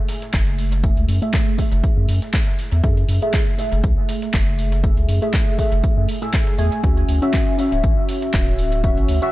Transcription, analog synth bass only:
0.34 0.93 F#1 loud
0.97 1.07 C#2 loud
1.09 1.20 F#2 loud
1.72 1.81 F#1 loud
1.97 2.07 F#2 medium
2.09 2.20 F#2 medium
2.72 2.82 E2 medium
2.84 3.04 F#2 loud
3.09 3.20 F#2 loud
3.72 3.82 F#1 medium
3.84 3.95 C#2 loud
4.34 4.93 F#1 loud
4.97 5.07 C#2 loud
5.09 5.20 F#2 loud
5.72 5.82 F#1 loud
5.97 6.07 F#2 loud
6.59 6.70 E2 loud
6.84 7.04 D2 loud
7.09 7.20 D2 loud
7.72 7.82 D1 medium
7.84 7.95 A1 loud
8.34 8.93 D1 loud
8.97 9.07 A1 loud
9.09 9.20 D2 loud

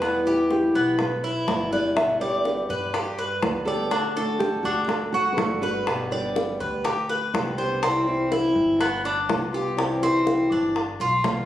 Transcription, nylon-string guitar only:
0.00 0.53 B4 loud
0.51 0.96 G4 medium
1.00 1.45 B4 medium
1.73 1.96 D5 medium
1.96 2.20 E5 medium
2.21 3.72 D5 medium
3.65 4.39 A4 loud
4.39 4.62 G4 medium
4.63 4.87 F#4 medium
4.87 5.11 A4 medium
5.12 5.32 F#4 medium
5.33 5.39 B4 medium
5.37 5.63 A4 medium
5.62 7.29 B4 medium

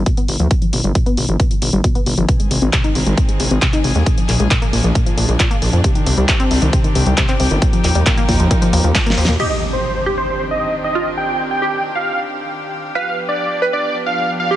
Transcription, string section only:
2.29 4.05 D#3 medium
2.29 4.05 G#3 medium
2.29 4.05 C4 medium
2.29 5.81 G#4 medium
4.06 5.82 F3 medium
4.06 5.82 A#3 medium
4.06 7.58 D4 medium
5.84 7.60 D#3 medium
5.84 7.60 C4 medium
5.84 9.36 G4 medium
7.62 9.38 F3 medium
7.62 9.38 A#3 medium
7.62 9.38 D#4 medium
9.40 12.92 D#3 medium
9.40 12.92 C4 medium
9.40 12.92 D4 medium
9.40 14.56 G4 medium
12.95 14.56 F3 medium
12.95 14.56 B3 medium
12.95 14.56 D4 medium

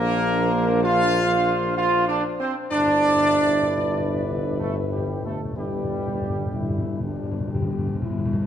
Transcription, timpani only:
2.71 2.78 G2 soft
2.79 2.85 G2 soft
2.87 2.93 G2 soft
2.94 3.00 G2 soft
3.09 3.15 G2 soft
3.16 3.23 G2 soft
3.24 3.31 G2 soft
3.32 3.39 G2 soft
3.40 3.46 G2 soft
3.47 3.54 G2 soft
3.55 3.61 G2 soft
3.62 3.68 G2 soft
3.69 3.76 G2 soft
3.77 3.84 G2 soft
3.85 3.92 G2 soft
3.93 3.98 G2 soft
4.00 4.06 G2 soft
4.08 4.14 G2 soft
4.15 4.21 G2 soft
4.22 4.29 G2 medium
4.30 4.36 G2 soft
4.37 4.43 G2 medium
4.45 4.51 G2 medium
4.52 4.59 G2 medium
4.60 4.66 G2 medium
4.67 4.73 G2 medium
4.75 4.81 G2 medium
4.83 4.90 G2 medium
4.91 4.97 G2 medium
4.98 5.04 G2 medium
5.06 5.12 G2 medium
5.13 5.21 G2 medium
5.22 5.28 G2 medium
5.29 5.36 G2 medium
5.37 5.44 G2 medium
5.45 5.51 G2 medium
5.52 5.60 G2 medium
5.61 5.67 G2 medium
5.68 5.74 G2 medium
5.75 5.83 G2 medium
5.84 5.89 G2 medium
5.90 5.97 G2 medium
5.98 6.06 G2 medium
6.07 6.13 G2 medium
6.14 6.20 G2 medium
6.21 6.28 G2 medium
6.30 6.37 G2 medium
6.38 6.45 G2 medium
6.46 6.52 G2 medium
6.54 6.61 G2 medium
6.62 6.68 G2 medium
6.69 6.77 G2 medium
6.78 6.84 G2 medium
6.85 6.91 G2 medium
6.93 6.99 G2 medium
7.00 7.07 G2 medium
7.08 7.15 G2 medium
7.16 7.22 G2 medium
7.23 7.30 G2 medium
7.31 7.39 G2 medium
7.40 7.46 G2 medium
7.48 7.53 G2 medium
7.54 7.61 G2 medium
7.62 7.69 G2 medium
7.70 7.77 G2 medium
7.78 7.85 G2 medium
7.86 7.93 G2 medium
7.94 8.01 G2 medium
8.02 8.09 G2 medium
8.10 8.17 G2 loud
8.18 8.24 G2 medium
8.25 8.32 G2 loud
8.33 8.40 G2 loud
8.41 8.47 G2 loud

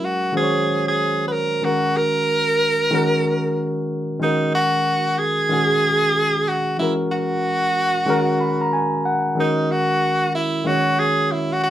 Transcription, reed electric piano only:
0.00 0.13 F#3 medium
0.00 0.14 G#3 medium
0.00 0.14 C#4 medium
0.00 0.15 F#4 medium
0.00 0.15 A#4 medium
0.32 1.42 D#3 medium
0.32 1.43 G#3 medium
0.32 1.44 C#4 medium
0.32 1.44 F#4 medium
0.37 0.44 C5 medium
0.43 1.48 C#5 medium
1.61 2.71 D#3 medium
1.61 2.72 G#3 medium
1.61 2.72 C#4 medium
1.61 2.73 F#4 medium
1.66 2.74 A#4 medium
2.91 4.01 D#3 medium
2.91 4.01 G#3 medium
2.91 4.02 C#4 medium
2.91 4.02 F#4 medium
2.91 4.03 A#4 medium
4.20 5.30 D#3 medium
4.20 5.30 G#3 medium
4.20 5.31 C#4 medium
4.20 5.31 F#4 medium
4.24 5.32 A#4 medium
5.50 6.59 D#3 medium
5.50 6.60 G#3 medium
5.50 6.60 C#4 medium
5.50 6.60 F#4 medium
5.50 6.61 G#4 medium
6.78 7.88 E3 medium
6.78 7.88 G#3 medium
6.78 7.89 C#4 medium
6.78 7.89 F#4 medium
6.82 7.90 A#4 medium
8.06 9.16 D#3 medium
8.06 9.17 G#3 medium
8.06 9.17 C#4 medium
8.06 9.18 F#4 medium
8.10 9.18 A#4 medium
8.40 8.59 B5 medium
8.61 8.72 A#5 medium
8.73 9.03 G#5 medium
9.05 9.35 F#5 medium
9.35 10.45 D#3 medium
9.35 10.46 G#3 medium
9.35 10.47 C#4 medium
9.35 10.47 F#4 medium
9.40 10.48 A#4 medium
10.64 11.70 D#3 medium
10.64 11.70 G#3 medium
10.64 11.70 C#4 medium
10.64 11.70 F#4 medium
10.68 11.70 C#5 medium

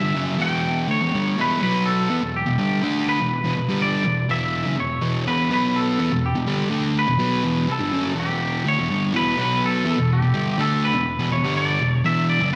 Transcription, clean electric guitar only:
0.00 0.41 E5 loud
0.42 0.91 G5 loud
0.91 1.40 C#5 medium
1.41 1.62 B4 loud
1.63 1.87 B4 medium
1.86 2.31 A4 loud
2.36 3.11 G4 medium
3.09 3.82 B4 medium
3.82 4.30 D5 loud
4.31 4.80 E5 medium
4.80 5.24 C#5 medium
5.28 5.50 B4 medium
5.53 5.77 B4 loud
5.76 6.25 A4 loud
6.26 6.93 G4 medium
6.99 7.72 B4 medium
7.72 8.19 A4 medium
8.20 8.87 G4 medium
8.68 9.16 C#5 medium
9.16 9.40 B4 loud
9.42 9.63 B4 medium
9.66 9.87 A4 loud
9.89 10.13 A4 medium
10.13 10.52 G4 medium
10.53 10.59 G4 medium
10.61 10.85 A4 medium
10.85 11.32 B4 loud
11.32 11.57 C#5 medium
11.57 11.94 D5 loud
11.94 12.05 C#5 loud
12.06 12.29 E5 loud
12.30 12.53 D5 loud

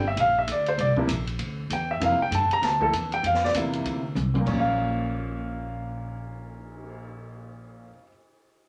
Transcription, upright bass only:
0.00 0.16 G1 medium
0.17 0.47 A#1 medium
0.47 0.77 D2 medium
0.78 0.95 C2 medium
0.96 muted upright bass stroke soft
1.07 1.38 A#1 medium
1.39 1.69 D2 medium
1.70 2.00 E2 medium
2.00 2.18 F2 medium
2.19 muted upright bass stroke soft
2.31 2.49 G2 medium
2.49 muted upright bass stroke soft
2.62 2.92 D2 medium
2.93 3.23 E2 medium
3.23 3.53 F2 medium
3.54 3.84 E2 medium
3.84 4.14 D2 medium
4.15 4.45 C2 medium
4.46 7.90 A#1 medium

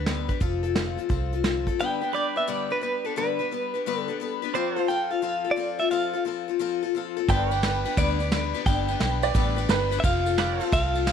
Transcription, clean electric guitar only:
1.81 2.14 G5 loud
2.15 2.37 D5 loud
2.37 2.49 E5 loud
2.49 2.71 D5 loud
2.72 2.82 B4 loud
2.83 3.06 B4 medium
3.06 3.17 A4 medium
3.18 4.01 B4 loud
4.01 4.39 A4 loud
4.55 4.87 C5 loud
4.88 5.11 G5 loud
5.11 5.53 F5 loud
5.51 5.78 D5 loud
5.80 5.91 E5 loud
5.91 6.23 F5 medium
7.30 8.00 G5 loud
7.98 8.63 D5 loud
8.66 9.88 G5 loud
10.00 10.04 E5 medium
10.05 10.69 F5 loud
10.73 11.12 F5 loud

